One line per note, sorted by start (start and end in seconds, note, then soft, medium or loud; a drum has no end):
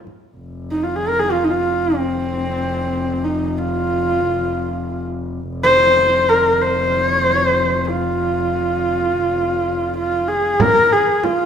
0.07 frame drum soft
0.38 5.48 F1 medium
0.71 0.85 D#4 medium
0.83 0.98 F4 medium
0.96 1.09 G#4 medium
1.08 1.21 A#4 medium
1.19 1.33 G#4 medium
1.31 1.46 F4 medium
1.44 1.51 D#4 medium
1.50 1.99 F4 medium
1.97 3.26 C4 medium
3.24 3.59 D#4 medium
3.57 5.03 F4 medium
5.48 10.65 F1 medium
5.63 6.31 C5 loud
6.29 6.63 A#4 medium
6.61 7.06 C5 medium
7.06 7.18 C#5 medium
7.18 7.32 C5 medium
7.32 7.44 C#5 medium
7.44 7.90 C5 medium
7.89 9.96 F4 medium
9.97 10.29 F4 medium
10.28 10.62 G#4 medium
10.60 10.94 A#4 loud
10.60 frame drum medium
10.92 11.25 G#4 medium
11.24 11.46 F4 medium
11.24 frame drum medium